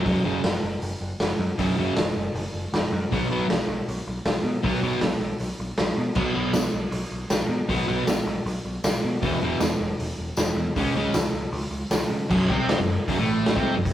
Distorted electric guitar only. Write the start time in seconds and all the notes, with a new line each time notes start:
0.06 F#2 C#3 F#3
0.25 F#2 C#3 F#3
1.58 F#2 C#3 F#3
1.78 F#2 C#3 F#3
3.12 B2 F#3 B3
3.31 B2 F#3 B3
4.63 B2 F#3 B3
4.82 B2 F#3 B3
6.15 B2 F#3 B3
6.34 B2 F#3 B3
7.69 B2 F#3 B3
7.87 B2 F#3 B3
9.22 E2 B2 E3
9.42 E2 B2 E3
10.76 C#3 G#3 C#4
10.96 C#3 G#3 C#4
12.30 F#2 F#3
12.48 C3 C4
12.80 F#2
13.08 F#2 F#3
13.18 A2 A3
13.56 C3 C4
13.75 F#2